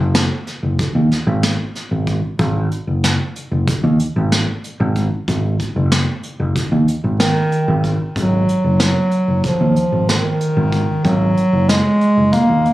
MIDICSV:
0, 0, Header, 1, 4, 480
1, 0, Start_track
1, 0, Tempo, 641026
1, 1791, Time_signature, 9, 3, 24, 8
1, 9535, End_track
2, 0, Start_track
2, 0, Title_t, "Bass clarinet"
2, 0, Program_c, 0, 71
2, 5392, Note_on_c, 0, 51, 101
2, 5841, Note_off_c, 0, 51, 0
2, 6131, Note_on_c, 0, 54, 81
2, 6571, Note_off_c, 0, 54, 0
2, 6603, Note_on_c, 0, 54, 83
2, 7047, Note_off_c, 0, 54, 0
2, 7076, Note_on_c, 0, 53, 70
2, 7524, Note_off_c, 0, 53, 0
2, 7560, Note_on_c, 0, 51, 82
2, 8274, Note_on_c, 0, 54, 92
2, 8285, Note_off_c, 0, 51, 0
2, 8758, Note_on_c, 0, 56, 100
2, 8769, Note_off_c, 0, 54, 0
2, 9232, Note_on_c, 0, 58, 93
2, 9243, Note_off_c, 0, 56, 0
2, 9512, Note_off_c, 0, 58, 0
2, 9535, End_track
3, 0, Start_track
3, 0, Title_t, "Fingered electric bass"
3, 0, Program_c, 1, 33
3, 0, Note_on_c, 1, 30, 75
3, 201, Note_off_c, 1, 30, 0
3, 470, Note_on_c, 1, 30, 68
3, 577, Note_off_c, 1, 30, 0
3, 712, Note_on_c, 1, 39, 74
3, 818, Note_off_c, 1, 39, 0
3, 949, Note_on_c, 1, 32, 83
3, 1162, Note_off_c, 1, 32, 0
3, 1431, Note_on_c, 1, 32, 85
3, 1643, Note_off_c, 1, 32, 0
3, 1790, Note_on_c, 1, 32, 96
3, 2002, Note_off_c, 1, 32, 0
3, 2152, Note_on_c, 1, 30, 71
3, 2363, Note_off_c, 1, 30, 0
3, 2632, Note_on_c, 1, 30, 73
3, 2737, Note_off_c, 1, 30, 0
3, 2872, Note_on_c, 1, 39, 73
3, 2977, Note_off_c, 1, 39, 0
3, 3116, Note_on_c, 1, 32, 79
3, 3325, Note_off_c, 1, 32, 0
3, 3595, Note_on_c, 1, 32, 94
3, 3804, Note_off_c, 1, 32, 0
3, 3954, Note_on_c, 1, 32, 83
3, 4164, Note_off_c, 1, 32, 0
3, 4313, Note_on_c, 1, 30, 72
3, 4523, Note_off_c, 1, 30, 0
3, 4790, Note_on_c, 1, 30, 75
3, 4895, Note_off_c, 1, 30, 0
3, 5030, Note_on_c, 1, 39, 74
3, 5136, Note_off_c, 1, 39, 0
3, 5270, Note_on_c, 1, 32, 78
3, 5482, Note_off_c, 1, 32, 0
3, 5750, Note_on_c, 1, 32, 89
3, 5961, Note_off_c, 1, 32, 0
3, 6110, Note_on_c, 1, 32, 80
3, 6322, Note_off_c, 1, 32, 0
3, 6471, Note_on_c, 1, 30, 70
3, 6682, Note_off_c, 1, 30, 0
3, 6949, Note_on_c, 1, 30, 62
3, 7056, Note_off_c, 1, 30, 0
3, 7194, Note_on_c, 1, 39, 68
3, 7298, Note_off_c, 1, 39, 0
3, 7430, Note_on_c, 1, 32, 68
3, 7642, Note_off_c, 1, 32, 0
3, 7912, Note_on_c, 1, 32, 79
3, 8124, Note_off_c, 1, 32, 0
3, 8272, Note_on_c, 1, 32, 86
3, 8484, Note_off_c, 1, 32, 0
3, 8633, Note_on_c, 1, 30, 74
3, 8845, Note_off_c, 1, 30, 0
3, 9115, Note_on_c, 1, 30, 62
3, 9220, Note_off_c, 1, 30, 0
3, 9354, Note_on_c, 1, 39, 66
3, 9460, Note_off_c, 1, 39, 0
3, 9535, End_track
4, 0, Start_track
4, 0, Title_t, "Drums"
4, 111, Note_on_c, 9, 38, 113
4, 111, Note_on_c, 9, 42, 79
4, 186, Note_off_c, 9, 38, 0
4, 186, Note_off_c, 9, 42, 0
4, 352, Note_on_c, 9, 38, 30
4, 352, Note_on_c, 9, 42, 53
4, 426, Note_off_c, 9, 38, 0
4, 426, Note_off_c, 9, 42, 0
4, 591, Note_on_c, 9, 42, 87
4, 593, Note_on_c, 9, 36, 120
4, 666, Note_off_c, 9, 42, 0
4, 668, Note_off_c, 9, 36, 0
4, 835, Note_on_c, 9, 38, 34
4, 835, Note_on_c, 9, 42, 55
4, 910, Note_off_c, 9, 38, 0
4, 910, Note_off_c, 9, 42, 0
4, 1072, Note_on_c, 9, 38, 106
4, 1072, Note_on_c, 9, 42, 76
4, 1147, Note_off_c, 9, 38, 0
4, 1147, Note_off_c, 9, 42, 0
4, 1313, Note_on_c, 9, 38, 36
4, 1313, Note_on_c, 9, 42, 57
4, 1388, Note_off_c, 9, 38, 0
4, 1388, Note_off_c, 9, 42, 0
4, 1549, Note_on_c, 9, 42, 57
4, 1551, Note_on_c, 9, 36, 75
4, 1624, Note_off_c, 9, 42, 0
4, 1626, Note_off_c, 9, 36, 0
4, 1788, Note_on_c, 9, 42, 73
4, 1792, Note_on_c, 9, 36, 103
4, 1863, Note_off_c, 9, 42, 0
4, 1867, Note_off_c, 9, 36, 0
4, 2033, Note_on_c, 9, 42, 64
4, 2107, Note_off_c, 9, 42, 0
4, 2275, Note_on_c, 9, 38, 106
4, 2275, Note_on_c, 9, 42, 92
4, 2350, Note_off_c, 9, 38, 0
4, 2350, Note_off_c, 9, 42, 0
4, 2514, Note_on_c, 9, 42, 60
4, 2589, Note_off_c, 9, 42, 0
4, 2752, Note_on_c, 9, 42, 93
4, 2753, Note_on_c, 9, 36, 113
4, 2827, Note_off_c, 9, 36, 0
4, 2827, Note_off_c, 9, 42, 0
4, 2990, Note_on_c, 9, 42, 59
4, 3065, Note_off_c, 9, 42, 0
4, 3235, Note_on_c, 9, 38, 94
4, 3235, Note_on_c, 9, 42, 79
4, 3310, Note_off_c, 9, 38, 0
4, 3310, Note_off_c, 9, 42, 0
4, 3474, Note_on_c, 9, 42, 67
4, 3549, Note_off_c, 9, 42, 0
4, 3712, Note_on_c, 9, 42, 64
4, 3713, Note_on_c, 9, 36, 70
4, 3787, Note_off_c, 9, 42, 0
4, 3788, Note_off_c, 9, 36, 0
4, 3953, Note_on_c, 9, 36, 91
4, 3954, Note_on_c, 9, 42, 74
4, 4028, Note_off_c, 9, 36, 0
4, 4029, Note_off_c, 9, 42, 0
4, 4192, Note_on_c, 9, 36, 65
4, 4193, Note_on_c, 9, 42, 58
4, 4267, Note_off_c, 9, 36, 0
4, 4268, Note_off_c, 9, 42, 0
4, 4431, Note_on_c, 9, 38, 112
4, 4431, Note_on_c, 9, 42, 79
4, 4506, Note_off_c, 9, 38, 0
4, 4506, Note_off_c, 9, 42, 0
4, 4667, Note_on_c, 9, 42, 64
4, 4742, Note_off_c, 9, 42, 0
4, 4910, Note_on_c, 9, 36, 105
4, 4910, Note_on_c, 9, 42, 85
4, 4985, Note_off_c, 9, 36, 0
4, 4985, Note_off_c, 9, 42, 0
4, 5151, Note_on_c, 9, 42, 61
4, 5226, Note_off_c, 9, 42, 0
4, 5390, Note_on_c, 9, 38, 105
4, 5390, Note_on_c, 9, 42, 79
4, 5465, Note_off_c, 9, 38, 0
4, 5465, Note_off_c, 9, 42, 0
4, 5629, Note_on_c, 9, 42, 58
4, 5704, Note_off_c, 9, 42, 0
4, 5870, Note_on_c, 9, 36, 69
4, 5871, Note_on_c, 9, 42, 54
4, 5944, Note_off_c, 9, 36, 0
4, 5946, Note_off_c, 9, 42, 0
4, 6110, Note_on_c, 9, 36, 103
4, 6113, Note_on_c, 9, 42, 77
4, 6185, Note_off_c, 9, 36, 0
4, 6188, Note_off_c, 9, 42, 0
4, 6354, Note_on_c, 9, 42, 59
4, 6429, Note_off_c, 9, 42, 0
4, 6587, Note_on_c, 9, 38, 101
4, 6587, Note_on_c, 9, 42, 74
4, 6662, Note_off_c, 9, 38, 0
4, 6662, Note_off_c, 9, 42, 0
4, 6824, Note_on_c, 9, 42, 55
4, 6899, Note_off_c, 9, 42, 0
4, 7068, Note_on_c, 9, 36, 110
4, 7068, Note_on_c, 9, 42, 80
4, 7143, Note_off_c, 9, 36, 0
4, 7143, Note_off_c, 9, 42, 0
4, 7309, Note_on_c, 9, 42, 60
4, 7384, Note_off_c, 9, 42, 0
4, 7555, Note_on_c, 9, 38, 93
4, 7555, Note_on_c, 9, 42, 70
4, 7630, Note_off_c, 9, 38, 0
4, 7630, Note_off_c, 9, 42, 0
4, 7791, Note_on_c, 9, 42, 59
4, 7866, Note_off_c, 9, 42, 0
4, 8029, Note_on_c, 9, 42, 54
4, 8031, Note_on_c, 9, 36, 76
4, 8104, Note_off_c, 9, 42, 0
4, 8106, Note_off_c, 9, 36, 0
4, 8272, Note_on_c, 9, 36, 96
4, 8273, Note_on_c, 9, 42, 66
4, 8347, Note_off_c, 9, 36, 0
4, 8348, Note_off_c, 9, 42, 0
4, 8516, Note_on_c, 9, 42, 52
4, 8591, Note_off_c, 9, 42, 0
4, 8754, Note_on_c, 9, 38, 102
4, 8754, Note_on_c, 9, 42, 70
4, 8829, Note_off_c, 9, 38, 0
4, 8829, Note_off_c, 9, 42, 0
4, 8992, Note_on_c, 9, 42, 54
4, 9066, Note_off_c, 9, 42, 0
4, 9231, Note_on_c, 9, 38, 34
4, 9231, Note_on_c, 9, 42, 76
4, 9233, Note_on_c, 9, 36, 108
4, 9306, Note_off_c, 9, 38, 0
4, 9306, Note_off_c, 9, 42, 0
4, 9308, Note_off_c, 9, 36, 0
4, 9476, Note_on_c, 9, 42, 55
4, 9535, Note_off_c, 9, 42, 0
4, 9535, End_track
0, 0, End_of_file